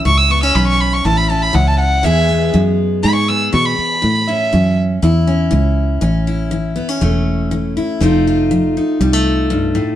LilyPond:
<<
  \new Staff \with { instrumentName = "Violin" } { \time 4/4 \key a \major \tempo 4 = 121 cis'''16 e'''16 cis'''16 e'''16 b''16 cis'''16 b''16 cis'''16 a''16 b''16 a''16 b''16 fis''16 a''16 fis''8 | e''4 r4 b''16 cis'''16 e'''16 r16 cis'''16 b''8.~ | b''8 e''4 r2 r8 | r1 |
r1 | }
  \new Staff \with { instrumentName = "Steel-string acoustic guitar" } { \clef bass \time 4/4 \key a \major << { e'8 b16 cis'4~ cis'16 e'8 cis'4. | <e gis b gis'>8 b4. gis'8 b4. | r8 cis'4. e'8 cis'4. | cis'8 e'4 b16 cis'16 a4. e'8 |
<f a ees' f'>8 f'4 ees'8 g16 a4.~ a16 | } \\ { a,4 e4 e,4 e4 | e,4 e4 b,4 e4 | a,4 e4 e,4 e4 | a,4 e4 e,4 e4 |
f,4 f4 c4 g,8 a,8 | } >> }
  \new Staff \with { instrumentName = "Fingered electric bass" } { \clef bass \time 4/4 \key a \major cis,4 b,,4 a,,4 cis,4 | e,4 fis,4 gis,4 b,8 r8 | a,4 fis,4 e,4 cis,4 | a,,2 e,,2 |
f,,2 c,2 | }
>>